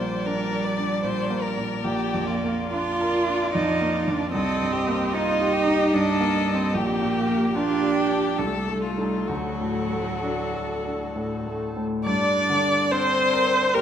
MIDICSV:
0, 0, Header, 1, 5, 480
1, 0, Start_track
1, 0, Key_signature, -2, "minor"
1, 0, Tempo, 787402
1, 1117, Tempo, 887574
1, 1118, Time_signature, 3, 2, 24, 8
1, 1597, Tempo, 820793
1, 2077, Tempo, 798935
1, 3517, Tempo, 817439
1, 4957, Tempo, 917431
1, 6877, Tempo, 837989
1, 7883, End_track
2, 0, Start_track
2, 0, Title_t, "Viola"
2, 0, Program_c, 0, 41
2, 0, Note_on_c, 0, 74, 49
2, 1113, Note_off_c, 0, 74, 0
2, 1116, Note_on_c, 0, 74, 52
2, 1588, Note_off_c, 0, 74, 0
2, 1592, Note_on_c, 0, 74, 57
2, 2533, Note_off_c, 0, 74, 0
2, 2553, Note_on_c, 0, 75, 57
2, 3030, Note_off_c, 0, 75, 0
2, 3033, Note_on_c, 0, 75, 59
2, 3989, Note_on_c, 0, 67, 61
2, 3998, Note_off_c, 0, 75, 0
2, 4461, Note_off_c, 0, 67, 0
2, 4464, Note_on_c, 0, 67, 57
2, 4958, Note_on_c, 0, 69, 54
2, 4966, Note_off_c, 0, 67, 0
2, 5428, Note_off_c, 0, 69, 0
2, 5431, Note_on_c, 0, 69, 52
2, 6747, Note_off_c, 0, 69, 0
2, 6872, Note_on_c, 0, 74, 91
2, 7364, Note_on_c, 0, 72, 89
2, 7373, Note_off_c, 0, 74, 0
2, 7838, Note_on_c, 0, 70, 91
2, 7847, Note_off_c, 0, 72, 0
2, 7883, Note_off_c, 0, 70, 0
2, 7883, End_track
3, 0, Start_track
3, 0, Title_t, "Violin"
3, 0, Program_c, 1, 40
3, 0, Note_on_c, 1, 72, 47
3, 160, Note_on_c, 1, 70, 54
3, 169, Note_off_c, 1, 72, 0
3, 394, Note_on_c, 1, 74, 54
3, 403, Note_off_c, 1, 70, 0
3, 627, Note_off_c, 1, 74, 0
3, 631, Note_on_c, 1, 72, 58
3, 866, Note_on_c, 1, 70, 53
3, 875, Note_off_c, 1, 72, 0
3, 1123, Note_on_c, 1, 67, 59
3, 1131, Note_off_c, 1, 70, 0
3, 1353, Note_on_c, 1, 65, 47
3, 1361, Note_off_c, 1, 67, 0
3, 2548, Note_off_c, 1, 65, 0
3, 2552, Note_on_c, 1, 69, 63
3, 2790, Note_on_c, 1, 67, 53
3, 2799, Note_off_c, 1, 69, 0
3, 3028, Note_on_c, 1, 65, 64
3, 3037, Note_off_c, 1, 67, 0
3, 3270, Note_on_c, 1, 67, 64
3, 3279, Note_off_c, 1, 65, 0
3, 3514, Note_on_c, 1, 69, 68
3, 3523, Note_off_c, 1, 67, 0
3, 3994, Note_on_c, 1, 67, 57
3, 4002, Note_off_c, 1, 69, 0
3, 4469, Note_on_c, 1, 65, 57
3, 4478, Note_off_c, 1, 67, 0
3, 4701, Note_off_c, 1, 65, 0
3, 4705, Note_on_c, 1, 67, 55
3, 4953, Note_on_c, 1, 69, 57
3, 4961, Note_off_c, 1, 67, 0
3, 5178, Note_off_c, 1, 69, 0
3, 5181, Note_on_c, 1, 65, 45
3, 5422, Note_on_c, 1, 66, 41
3, 5430, Note_off_c, 1, 65, 0
3, 6643, Note_off_c, 1, 66, 0
3, 6873, Note_on_c, 1, 74, 69
3, 7369, Note_on_c, 1, 72, 86
3, 7377, Note_off_c, 1, 74, 0
3, 7839, Note_on_c, 1, 70, 72
3, 7847, Note_off_c, 1, 72, 0
3, 7883, Note_off_c, 1, 70, 0
3, 7883, End_track
4, 0, Start_track
4, 0, Title_t, "Cello"
4, 0, Program_c, 2, 42
4, 0, Note_on_c, 2, 55, 80
4, 1111, Note_off_c, 2, 55, 0
4, 1115, Note_on_c, 2, 58, 82
4, 1587, Note_off_c, 2, 58, 0
4, 1599, Note_on_c, 2, 65, 84
4, 2069, Note_off_c, 2, 65, 0
4, 2074, Note_on_c, 2, 63, 74
4, 2423, Note_on_c, 2, 62, 79
4, 2432, Note_off_c, 2, 63, 0
4, 2545, Note_off_c, 2, 62, 0
4, 2548, Note_on_c, 2, 60, 87
4, 3041, Note_on_c, 2, 63, 86
4, 3050, Note_off_c, 2, 60, 0
4, 3518, Note_on_c, 2, 62, 79
4, 3526, Note_off_c, 2, 63, 0
4, 3873, Note_on_c, 2, 60, 73
4, 3882, Note_off_c, 2, 62, 0
4, 3992, Note_on_c, 2, 58, 88
4, 4000, Note_off_c, 2, 60, 0
4, 4463, Note_on_c, 2, 62, 90
4, 4472, Note_off_c, 2, 58, 0
4, 4954, Note_on_c, 2, 55, 56
4, 4962, Note_off_c, 2, 62, 0
4, 5000, Note_on_c, 2, 57, 54
4, 5008, Note_off_c, 2, 55, 0
4, 5041, Note_on_c, 2, 55, 49
4, 5049, Note_off_c, 2, 57, 0
4, 5094, Note_on_c, 2, 57, 55
4, 5102, Note_off_c, 2, 55, 0
4, 5138, Note_on_c, 2, 55, 52
4, 5146, Note_off_c, 2, 57, 0
4, 5182, Note_on_c, 2, 57, 52
4, 5190, Note_off_c, 2, 55, 0
4, 5230, Note_on_c, 2, 55, 68
4, 5238, Note_off_c, 2, 57, 0
4, 5430, Note_off_c, 2, 55, 0
4, 5432, Note_on_c, 2, 54, 74
4, 6390, Note_off_c, 2, 54, 0
4, 6880, Note_on_c, 2, 62, 80
4, 7372, Note_on_c, 2, 60, 78
4, 7381, Note_off_c, 2, 62, 0
4, 7842, Note_off_c, 2, 60, 0
4, 7845, Note_on_c, 2, 58, 64
4, 7883, Note_off_c, 2, 58, 0
4, 7883, End_track
5, 0, Start_track
5, 0, Title_t, "Grand piano"
5, 0, Program_c, 3, 0
5, 0, Control_c, 3, 64, 127
5, 0, Note_on_c, 3, 34, 47
5, 0, Note_on_c, 3, 46, 37
5, 0, Note_on_c, 3, 58, 40
5, 92, Note_off_c, 3, 46, 0
5, 153, Note_on_c, 3, 62, 40
5, 249, Note_off_c, 3, 58, 0
5, 313, Note_on_c, 3, 70, 40
5, 407, Note_off_c, 3, 62, 0
5, 472, Note_on_c, 3, 62, 36
5, 566, Note_off_c, 3, 70, 0
5, 636, Note_on_c, 3, 46, 41
5, 725, Note_off_c, 3, 62, 0
5, 794, Note_on_c, 3, 58, 41
5, 889, Note_off_c, 3, 46, 0
5, 960, Note_on_c, 3, 46, 34
5, 1053, Note_off_c, 3, 58, 0
5, 1091, Note_off_c, 3, 34, 0
5, 1122, Note_off_c, 3, 46, 0
5, 1125, Note_on_c, 3, 34, 52
5, 1127, Control_c, 3, 64, 0
5, 1217, Control_c, 3, 64, 127
5, 1284, Note_on_c, 3, 41, 44
5, 1447, Note_on_c, 3, 58, 43
5, 1540, Note_off_c, 3, 41, 0
5, 1603, Note_on_c, 3, 62, 47
5, 1704, Note_off_c, 3, 58, 0
5, 1765, Note_on_c, 3, 70, 47
5, 1863, Note_off_c, 3, 62, 0
5, 1921, Note_on_c, 3, 62, 43
5, 2017, Note_off_c, 3, 70, 0
5, 2082, Note_on_c, 3, 41, 46
5, 2172, Note_off_c, 3, 62, 0
5, 2241, Note_on_c, 3, 58, 42
5, 2334, Note_off_c, 3, 41, 0
5, 2399, Note_on_c, 3, 41, 43
5, 2494, Note_off_c, 3, 58, 0
5, 2536, Note_off_c, 3, 34, 0
5, 2558, Note_off_c, 3, 41, 0
5, 2560, Note_on_c, 3, 36, 56
5, 2566, Control_c, 3, 64, 0
5, 2660, Control_c, 3, 64, 127
5, 2720, Note_on_c, 3, 43, 44
5, 2879, Note_on_c, 3, 58, 47
5, 2978, Note_off_c, 3, 43, 0
5, 3039, Note_on_c, 3, 63, 49
5, 3137, Note_off_c, 3, 58, 0
5, 3202, Note_on_c, 3, 67, 49
5, 3296, Note_off_c, 3, 63, 0
5, 3361, Note_on_c, 3, 63, 48
5, 3456, Note_off_c, 3, 67, 0
5, 3518, Note_on_c, 3, 43, 49
5, 3613, Note_off_c, 3, 63, 0
5, 3674, Note_on_c, 3, 58, 51
5, 3770, Note_off_c, 3, 43, 0
5, 3830, Note_on_c, 3, 43, 42
5, 3929, Note_off_c, 3, 58, 0
5, 3972, Note_off_c, 3, 36, 0
5, 3991, Note_on_c, 3, 34, 58
5, 3992, Note_off_c, 3, 43, 0
5, 4006, Control_c, 3, 64, 0
5, 4106, Control_c, 3, 64, 127
5, 4149, Note_on_c, 3, 46, 45
5, 4308, Note_on_c, 3, 58, 49
5, 4403, Note_off_c, 3, 46, 0
5, 4465, Note_on_c, 3, 62, 51
5, 4564, Note_off_c, 3, 58, 0
5, 4623, Note_on_c, 3, 67, 45
5, 4726, Note_off_c, 3, 62, 0
5, 4794, Note_on_c, 3, 62, 41
5, 4889, Note_off_c, 3, 67, 0
5, 4935, Note_off_c, 3, 34, 0
5, 4955, Note_on_c, 3, 36, 56
5, 4959, Note_off_c, 3, 62, 0
5, 4970, Control_c, 3, 64, 0
5, 5074, Control_c, 3, 64, 127
5, 5109, Note_on_c, 3, 57, 42
5, 5264, Note_on_c, 3, 63, 36
5, 5267, Note_on_c, 3, 69, 40
5, 5363, Note_off_c, 3, 57, 0
5, 5411, Note_off_c, 3, 63, 0
5, 5413, Note_off_c, 3, 69, 0
5, 5414, Note_off_c, 3, 36, 0
5, 5429, Note_on_c, 3, 38, 48
5, 5441, Control_c, 3, 64, 0
5, 5537, Control_c, 3, 64, 127
5, 5595, Note_on_c, 3, 45, 38
5, 5758, Note_on_c, 3, 57, 39
5, 5855, Note_off_c, 3, 45, 0
5, 5918, Note_on_c, 3, 62, 44
5, 6018, Note_off_c, 3, 57, 0
5, 6081, Note_on_c, 3, 69, 43
5, 6181, Note_off_c, 3, 62, 0
5, 6249, Note_on_c, 3, 62, 35
5, 6343, Note_off_c, 3, 69, 0
5, 6405, Note_on_c, 3, 45, 39
5, 6504, Note_off_c, 3, 62, 0
5, 6568, Note_on_c, 3, 57, 37
5, 6661, Note_off_c, 3, 45, 0
5, 6724, Note_on_c, 3, 45, 33
5, 6818, Note_off_c, 3, 57, 0
5, 6857, Note_off_c, 3, 38, 0
5, 6877, Note_off_c, 3, 45, 0
5, 6878, Note_on_c, 3, 43, 55
5, 6890, Control_c, 3, 64, 0
5, 6983, Control_c, 3, 64, 127
5, 7126, Note_on_c, 3, 50, 48
5, 7368, Note_on_c, 3, 62, 56
5, 7511, Note_off_c, 3, 50, 0
5, 7605, Note_on_c, 3, 70, 51
5, 7746, Note_off_c, 3, 62, 0
5, 7842, Note_on_c, 3, 67, 55
5, 7883, Note_off_c, 3, 43, 0
5, 7883, Note_off_c, 3, 67, 0
5, 7883, Note_off_c, 3, 70, 0
5, 7883, End_track
0, 0, End_of_file